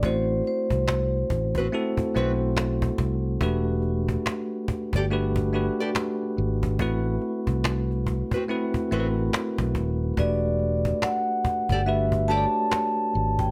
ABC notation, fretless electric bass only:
X:1
M:4/4
L:1/16
Q:"Swing 16ths" 1/4=71
K:Ador
V:1 name="Fretless electric bass" clef=bass
A,,,2 z C,,3 A,,,2 z2 B,,,4 C,,2 | E,,,4 z3 G,,,4 z3 ^G,,,2 | A,,,2 z C,,4 z3 A,,,2 z B,,, ^D,,,2 | E,,,4 z3 G,,,4 z3 ^G,,,2 |]